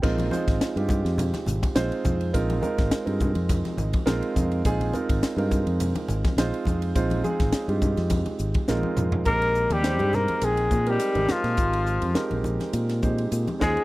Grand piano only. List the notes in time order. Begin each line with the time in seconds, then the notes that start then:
0.02 G#3 C4 D#4 F4 A#4
0.31 G#3 C4 D#4 F4 C5
0.76 G#3 C4 D#4 F4 G4
1.75 G#3 C4 D#4 F4 C5
2.33 G#3 C4 D#4 F4 A#4
2.62 G#3 C4 D#4 F4 A#4
3.05 G#3 C4 D#4 F4 A#4
3.77 D#5
4.06 G#3 C4 D#4 F4 A#4 F5
4.65 G#3 C4 D#4 F4 G#4
4.94 G#3 C4 D#4 F4 A#4
5.37 G#3 C4 D#4 F4 A#4
6.38 G#3 C4 D#4 F4 C5
6.95 G#3 C4 D#4 F4 C5
7.24 G#3 C4 D#4 F4 G#4
7.68 G#3 C4 D#4 F4 G4
8.68 G#3 C4 D#4 F4 A#4
9.25 G#3 C4 D#4 G4 A#4
9.83 G#3 C4 D#4 G4 C5
9.99 G#3 C4 D#4 G4 C5
10.41 G#3 C4 D#4 A#4 G5
10.87 G#3 C4 D#4 G4 A#4
11.15 G#3 C4 D#4 G4 A#4
12.14 G#3 C4 D#4 G4 A#4
13.02 G#3 C4 D#4 G4 C5
13.60 G#3 C#4 D#4 F4 C5